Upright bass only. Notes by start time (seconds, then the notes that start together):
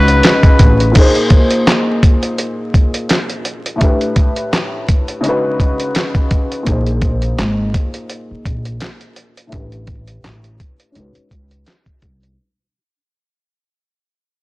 Already playing: C#2
0.60 A1
6.67 A#1
7.39 G#1
8.31 muted upright bass stroke
8.46 A#1
9.53 A1
10.25 A1
10.96 C#2
11.16 muted upright bass stroke
11.32 C#2
12.03 C2